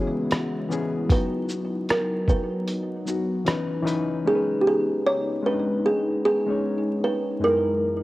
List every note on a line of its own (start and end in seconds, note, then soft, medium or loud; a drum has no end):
0.00 1.06 C#3 medium
0.00 0.66 E3 medium
0.00 1.06 G#3 medium
0.00 0.66 B3 medium
0.00 4.21 B3 medium
0.00 0.67 C#4 medium
0.00 1.06 E4 medium
0.00 1.11 F#4 medium
0.00 0.71 G#4 medium
0.00 1.16 C#5 loud
0.31 cross-stick loud
0.31 closed hi-hat medium
0.69 1.07 E3 medium
0.69 1.07 B3 medium
0.69 1.08 C#4 medium
0.69 shaker soft
0.73 1.09 G#4 medium
1.08 2.58 F#3 medium
1.08 3.44 F#3 medium
1.08 2.59 B3 medium
1.08 3.44 D#4 medium
1.08 2.59 D#4 medium
1.08 2.60 F#4 medium
1.08 1.92 B4 loud
1.08 kick loud
1.08 closed hi-hat medium
1.49 shaker medium
1.89 2.08 A#4 medium
1.89 cross-stick loud
1.89 closed hi-hat medium
2.28 3.83 B4 medium
2.28 kick medium
2.28 shaker soft
2.68 closed hi-hat medium
3.05 3.46 F#3 medium
3.05 3.46 B3 medium
3.05 3.46 D#4 medium
3.05 shaker medium
3.09 3.48 F#4 medium
3.45 4.24 C#3 medium
3.45 3.81 E3 medium
3.45 4.24 E3 medium
3.45 3.82 C#4 medium
3.45 4.24 D#4 medium
3.45 3.84 D#4 medium
3.45 3.85 B4 loud
3.45 cross-stick loud
3.45 closed hi-hat medium
3.82 4.21 E3 loud
3.82 4.22 C#4 medium
3.82 4.23 D#4 medium
3.82 4.23 B4 loud
3.87 closed hi-hat soft
3.87 shaker soft
4.25 5.37 G#3 medium
4.25 7.38 G#3 medium
4.25 7.38 B3 medium
4.25 5.38 C#4 medium
4.25 7.38 D#4 medium
4.25 5.38 D#4 medium
4.25 4.42 G#4 medium
4.29 4.35 A#4 medium
4.35 5.42 B4 medium
4.61 4.66 G4 medium
4.67 5.03 G#4 medium
5.07 5.46 C#5 loud
5.42 6.37 G#3 medium
5.42 6.38 C#4 medium
5.42 5.52 D4 medium
5.42 5.86 B4 medium
5.46 6.40 B4 medium
5.52 6.42 D#4 medium
5.86 6.24 G#4 medium
6.25 7.05 G#4 medium
6.46 7.36 G#3 medium
6.46 7.36 C#4 medium
6.46 7.37 D#4 medium
6.50 7.38 C#5 medium
7.04 7.43 B4 medium
7.40 8.03 F#2 medium
7.40 8.03 E3 medium
7.40 8.03 F#3 medium
7.40 8.03 G#3 medium
7.40 8.03 A#3 medium
7.40 8.03 D#4 medium
7.40 8.03 E4 medium
7.44 7.50 G#4 medium
7.44 8.03 A#4 medium
7.50 8.03 A#4 medium